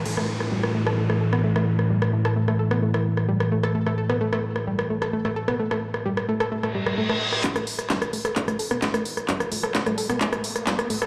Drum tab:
CC |x---------------|----------------|----------------|----------------|
HH |----------------|----------------|----------------|----------------|
TB |----------------|----------------|----------------|----------------|
CP |----------------|----------------|----------------|----------------|
SD |-r-r-r-r-r-r-r-r|-r-r-r-r-r-r-r-r|-r-r-r-r-r-r-r-r|-r-r-r-r-r-r-r-r|
BD |----------------|----------------|----------------|----------------|

CC |----------------|----------------|
HH |xxoxxxoxxxoxxxox|xxoxxxoxxxoxxxox|
TB |x-x-x-x-x-x-x-x-|x-x-x-x-x-x-x-x-|
CP |x---x---x---x---|x---x---x---x---|
SD |-r-ror-r-r-ror-r|-r-ror-r-r-ror-r|
BD |o---o---o---o---|o---o---o---o---|